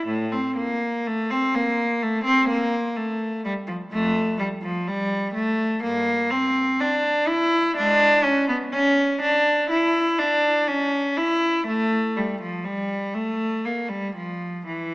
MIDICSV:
0, 0, Header, 1, 2, 480
1, 0, Start_track
1, 0, Tempo, 1001669
1, 21, Time_signature, 4, 2, 24, 8
1, 500, Tempo, 963082
1, 4820, Tempo, 983607
1, 6740, Tempo, 1013514
1, 7355, End_track
2, 0, Start_track
2, 0, Title_t, "Cello"
2, 0, Program_c, 0, 42
2, 31, Note_on_c, 0, 45, 92
2, 146, Note_off_c, 0, 45, 0
2, 153, Note_on_c, 0, 60, 82
2, 269, Note_off_c, 0, 60, 0
2, 270, Note_on_c, 0, 58, 90
2, 498, Note_off_c, 0, 58, 0
2, 510, Note_on_c, 0, 57, 97
2, 625, Note_off_c, 0, 57, 0
2, 629, Note_on_c, 0, 60, 98
2, 745, Note_off_c, 0, 60, 0
2, 750, Note_on_c, 0, 58, 98
2, 985, Note_off_c, 0, 58, 0
2, 987, Note_on_c, 0, 57, 93
2, 1098, Note_on_c, 0, 60, 107
2, 1103, Note_off_c, 0, 57, 0
2, 1216, Note_off_c, 0, 60, 0
2, 1219, Note_on_c, 0, 58, 98
2, 1453, Note_off_c, 0, 58, 0
2, 1457, Note_on_c, 0, 57, 85
2, 1695, Note_off_c, 0, 57, 0
2, 1697, Note_on_c, 0, 55, 98
2, 1737, Note_off_c, 0, 55, 0
2, 1810, Note_on_c, 0, 53, 91
2, 1850, Note_off_c, 0, 53, 0
2, 1929, Note_on_c, 0, 41, 85
2, 1934, Note_on_c, 0, 57, 103
2, 2152, Note_off_c, 0, 41, 0
2, 2166, Note_off_c, 0, 57, 0
2, 2167, Note_on_c, 0, 55, 88
2, 2207, Note_off_c, 0, 55, 0
2, 2281, Note_on_c, 0, 53, 96
2, 2402, Note_off_c, 0, 53, 0
2, 2409, Note_on_c, 0, 55, 104
2, 2640, Note_on_c, 0, 57, 97
2, 2647, Note_off_c, 0, 55, 0
2, 2878, Note_off_c, 0, 57, 0
2, 2882, Note_on_c, 0, 43, 74
2, 2883, Note_on_c, 0, 58, 103
2, 3107, Note_off_c, 0, 43, 0
2, 3120, Note_off_c, 0, 58, 0
2, 3123, Note_on_c, 0, 60, 101
2, 3365, Note_off_c, 0, 60, 0
2, 3369, Note_on_c, 0, 62, 92
2, 3605, Note_on_c, 0, 64, 108
2, 3610, Note_off_c, 0, 62, 0
2, 3848, Note_off_c, 0, 64, 0
2, 3850, Note_on_c, 0, 62, 118
2, 3851, Note_on_c, 0, 56, 97
2, 4075, Note_off_c, 0, 56, 0
2, 4083, Note_on_c, 0, 61, 99
2, 4086, Note_off_c, 0, 62, 0
2, 4206, Note_on_c, 0, 59, 86
2, 4208, Note_off_c, 0, 61, 0
2, 4246, Note_off_c, 0, 59, 0
2, 4330, Note_on_c, 0, 61, 106
2, 4569, Note_off_c, 0, 61, 0
2, 4574, Note_on_c, 0, 62, 100
2, 4812, Note_off_c, 0, 62, 0
2, 4814, Note_on_c, 0, 64, 94
2, 5049, Note_off_c, 0, 64, 0
2, 5052, Note_on_c, 0, 62, 96
2, 5289, Note_on_c, 0, 61, 92
2, 5294, Note_off_c, 0, 62, 0
2, 5532, Note_off_c, 0, 61, 0
2, 5532, Note_on_c, 0, 64, 101
2, 5774, Note_off_c, 0, 64, 0
2, 5774, Note_on_c, 0, 57, 107
2, 6011, Note_off_c, 0, 57, 0
2, 6016, Note_on_c, 0, 55, 85
2, 6137, Note_off_c, 0, 55, 0
2, 6138, Note_on_c, 0, 53, 83
2, 6250, Note_on_c, 0, 55, 92
2, 6255, Note_off_c, 0, 53, 0
2, 6493, Note_off_c, 0, 55, 0
2, 6493, Note_on_c, 0, 57, 94
2, 6736, Note_off_c, 0, 57, 0
2, 6740, Note_on_c, 0, 58, 82
2, 6854, Note_on_c, 0, 55, 89
2, 6857, Note_off_c, 0, 58, 0
2, 6974, Note_off_c, 0, 55, 0
2, 6982, Note_on_c, 0, 53, 81
2, 7214, Note_off_c, 0, 53, 0
2, 7221, Note_on_c, 0, 52, 76
2, 7355, Note_off_c, 0, 52, 0
2, 7355, End_track
0, 0, End_of_file